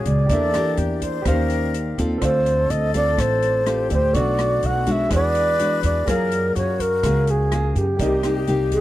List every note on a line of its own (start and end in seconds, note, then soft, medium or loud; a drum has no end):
0.00 0.27 A#2 medium
0.00 0.28 G#3 medium
0.00 0.28 C#4 medium
0.00 0.24 F#4 soft
0.00 0.28 F#4 medium
0.00 0.25 G#4 soft
0.00 0.26 G#4 medium
0.00 0.26 C#5 soft
0.00 0.27 F5 medium
0.05 0.28 C#2 medium
0.05 1.02 D5 medium
0.05 kick soft
0.05 closed hi-hat soft
0.26 0.74 E2 medium
0.26 1.23 A#3 soft
0.26 1.20 G4 medium
0.26 kick medium
0.26 closed hi-hat medium
0.30 1.24 E3 medium
0.30 0.50 D4 medium
0.30 0.51 G4 soft
0.30 0.80 A4 medium
0.30 0.51 A#4 medium
0.30 1.24 D5 soft
0.30 1.25 E5 medium
0.54 1.22 D4 medium
0.54 1.23 G4 medium
0.54 1.23 A#4 medium
0.54 cross-stick medium
0.54 closed hi-hat soft
0.77 1.22 E2 medium
0.77 1.05 G4 medium
0.77 closed hi-hat soft
1.02 1.28 C5 medium
1.02 kick soft
1.02 closed hi-hat soft
1.22 1.94 D#2 medium
1.22 2.18 G4 medium
1.22 2.19 C5 medium
1.22 kick medium
1.22 cross-stick medium
1.22 closed hi-hat medium
1.26 2.20 D#3 medium
1.26 1.74 C#4 medium
1.26 1.74 G4 medium
1.26 1.98 A#4 medium
1.26 1.74 C5 medium
1.26 2.21 F5 medium
1.50 closed hi-hat soft
1.74 closed hi-hat soft
1.98 2.20 D#2 medium
1.98 2.91 C4 medium
1.98 2.91 F4 medium
1.98 2.91 A4 medium
1.98 kick soft
1.98 closed hi-hat soft
2.18 2.67 D2 medium
2.18 3.16 D3 medium
2.18 3.85 A4 medium
2.18 3.68 A4 medium
2.18 3.86 C5 soft
2.18 kick medium
2.18 cross-stick medium
2.18 closed hi-hat medium
2.22 2.72 C5 medium
2.22 3.87 D5 soft
2.22 3.88 F5 medium
2.46 closed hi-hat soft
2.70 3.15 D2 medium
2.70 2.94 D#5 medium
2.70 closed hi-hat soft
2.94 3.62 C4 medium
2.94 3.63 F4 medium
2.94 3.63 A4 medium
2.94 3.22 D5 medium
2.94 kick soft
2.94 closed hi-hat soft
3.17 3.86 A1 medium
3.17 4.12 A2 medium
3.17 3.91 C5 medium
3.17 kick medium
3.17 cross-stick medium
3.17 closed hi-hat medium
3.42 closed hi-hat soft
3.66 3.97 C4 medium
3.66 3.97 F4 medium
3.66 4.16 G4 medium
3.66 3.97 A4 medium
3.66 cross-stick medium
3.66 closed hi-hat soft
3.90 4.13 D2 medium
3.90 4.12 A4 soft
3.90 4.15 C5 soft
3.90 4.16 C5 medium
3.90 4.15 D5 soft
3.90 4.16 G5 soft
3.90 kick soft
3.90 closed hi-hat soft
4.13 4.59 B1 medium
4.13 5.09 B2 medium
4.13 4.83 A3 soft
4.13 4.83 D4 medium
4.13 5.10 F#4 medium
4.13 4.84 F#4 medium
4.13 5.08 A4 medium
4.13 4.68 D5 loud
4.13 5.10 D5 soft
4.13 5.09 C#6 soft
4.13 kick medium
4.13 closed hi-hat soft
4.19 5.11 F#5 medium
4.39 cross-stick medium
4.39 closed hi-hat soft
4.63 5.07 B1 medium
4.63 4.93 F#5 medium
4.63 closed hi-hat soft
4.86 5.55 G#3 medium
4.86 5.55 D4 medium
4.86 5.55 F#4 medium
4.86 kick soft
4.86 closed hi-hat soft
4.92 5.13 E5 medium
5.09 5.79 E2 medium
5.09 6.04 E3 medium
5.09 6.04 G#4 soft
5.09 6.08 B4 loud
5.09 6.05 B4 soft
5.09 6.06 D5 soft
5.09 kick medium
5.09 cross-stick medium
5.09 closed hi-hat medium
5.14 5.81 D5 loud
5.14 6.07 F#5 medium
5.35 closed hi-hat soft
5.59 6.03 G#3 medium
5.59 6.04 D4 medium
5.59 6.04 F#4 medium
5.59 closed hi-hat soft
5.83 6.06 E2 medium
5.83 6.11 D5 medium
5.83 kick soft
5.83 closed hi-hat soft
6.06 6.52 F#2 loud
6.06 7.02 F#3 medium
6.06 6.72 A#3 medium
6.06 6.73 F4 medium
6.06 7.95 G#4 soft
6.06 6.73 G#4 medium
6.06 6.57 A#4 medium
6.06 7.96 A#4 soft
6.06 6.56 A#4 medium
6.06 7.97 C#5 soft
6.06 kick medium
6.06 cross-stick medium
6.06 closed hi-hat medium
6.11 7.98 F5 medium
6.32 closed hi-hat soft
6.56 7.00 F#2 medium
6.56 7.73 F#4 medium
6.56 6.82 C#5 medium
6.56 closed hi-hat soft
6.79 7.32 A#4 medium
6.79 kick soft
6.79 closed hi-hat soft
7.03 7.72 C#2 medium
7.03 7.98 C#3 medium
7.03 7.35 A#3 medium
7.03 7.35 G#4 medium
7.03 kick medium
7.03 cross-stick medium
7.03 closed hi-hat medium
7.27 7.79 G#4 medium
7.27 closed hi-hat soft
7.52 7.84 A#3 medium
7.52 7.84 F4 medium
7.52 7.85 G#4 medium
7.52 cross-stick medium
7.52 closed hi-hat soft
7.75 7.98 F#2 medium
7.75 8.46 G4 medium
7.75 kick soft
7.75 closed hi-hat soft
7.97 8.44 C2 medium
7.97 8.81 G4 soft
7.97 8.81 G4 medium
7.97 8.81 A#4 soft
7.97 8.81 D5 soft
7.97 kick medium
7.97 closed hi-hat medium
8.01 8.81 C3 medium
8.01 8.20 A#3 medium
8.01 8.21 D#4 medium
8.01 8.21 G4 medium
8.01 8.81 D#5 medium
8.23 8.44 A#3 medium
8.23 8.44 D#4 medium
8.23 8.45 G4 medium
8.23 cross-stick medium
8.23 closed hi-hat soft
8.47 8.81 C2 medium
8.47 8.79 A#3 medium
8.47 8.79 D#4 medium
8.47 8.79 G4 medium
8.47 closed hi-hat soft
8.71 8.81 A4 loud
8.71 kick soft
8.71 closed hi-hat soft